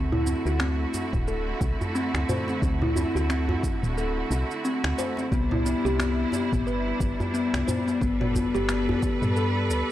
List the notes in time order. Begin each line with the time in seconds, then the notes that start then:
Already playing: D2 D3 A3 C4 E4 F#4
0.12 E4, mid tom, djembe tone
0.26 C4, djembe tone, shaker
0.46 D2 F#4, shaker
0.59 C4, finger snap, djembe tone, shaker
0.94 djembe slap, djembe tone, shaker
1.13 D1, kick, mid tom, shaker
1.28 A4, shaker
1.61 C2, kick, shaker
1.81 djembe bass, shaker
1.95 C4, shaker
2.14 D2, finger snap, djembe slap, djembe tone, shaker
2.29 C5, mid tom, djembe bass, shaker
2.48 C4, djembe slap, shaker
2.62 D2 C4, kick, shaker
2.82 E4, mid tom, djembe tone
2.96 C4, djembe tone, djembe bass, shaker
3.15 D2 F#4, shaker
3.29 C4, finger snap, djembe tone, shaker
3.49 djembe bass
3.63 kick, djembe slap, djembe tone, shaker
3.83 D1, mid tom, shaker
3.98 A4, shaker
4.31 C2, djembe slap, shaker
4.51 shaker
4.65 C4, shaker
4.84 D2, finger snap, shaker
4.98 C5, djembe slap, shaker
5.17 C4, djembe slap, shaker
5.32 C2 C3 G3 B3 D4 E4, kick, shaker
5.51 E4, mid tom, djembe tone
5.65 B3, djembe tone, shaker
5.85 C2 G4, shaker
5.99 B3, finger snap, djembe tone, shaker
6.32 djembe slap, djembe tone, shaker
6.53 G1, kick, mid tom, shaker
6.67 B4, shaker
7.00 G1, kick, shaker
7.20 djembe bass, shaker
7.34 B3, shaker
7.54 C2, finger snap, djembe slap, djembe tone, shaker
7.68 C5, mid tom, djembe bass, shaker
7.87 B3, djembe slap, shaker
8.01 G1 B3 A4 B4, kick, shaker
8.21 F#4, mid tom, djembe tone
8.35 B3, kick, djembe tone, djembe bass, shaker
8.55 G1 G4, shaker
8.69 B3, finger snap, djembe tone, shaker
8.89 djembe bass
9.03 kick, djembe slap, djembe tone, shaker
9.22 G2, mid tom, shaker
9.36 A4, shaker
9.70 D2, djembe slap, shaker